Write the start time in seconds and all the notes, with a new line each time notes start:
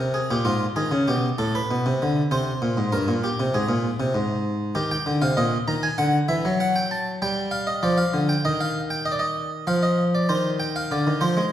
0.00 C3
0.14 G#4
0.31 A#2 G4
0.45 G#2 F4
0.76 D#3 G#4
0.91 C#3
1.08 B2 G4
1.38 A2 A4
1.55 B4
1.71 B2
1.86 C3
2.02 D3
2.31 C3 C5
2.62 A#2
2.77 G#2
2.92 G2 A#4
3.08 A#2
3.24 G4
3.40 C3
3.54 G#2 G#4
3.69 A#2
4.00 C3
4.15 G#2
4.75 D#3 G4
4.91 G5
5.06 D3
5.22 C3 F5
5.37 A#2 D#5
5.68 D#3 A#5
5.83 G#5
5.98 D3 F#5
6.29 E3 E5
6.45 F#3
6.60 F#5
6.76 G5
6.91 A5
7.22 G3 G5
7.51 F5
7.67 D#5
7.83 F3 D5
7.98 F5
8.14 D3
8.29 G5
8.45 D#3 D#5
8.61 F5
8.90 G5
9.05 D#5
9.12 D5
9.19 D#5
9.67 F3 F5
9.83 D#5
10.15 D5
10.29 D#3 C5
10.60 G5
10.76 F5
10.91 D3 D5
11.07 D#3
11.21 F3 C5
11.37 G#3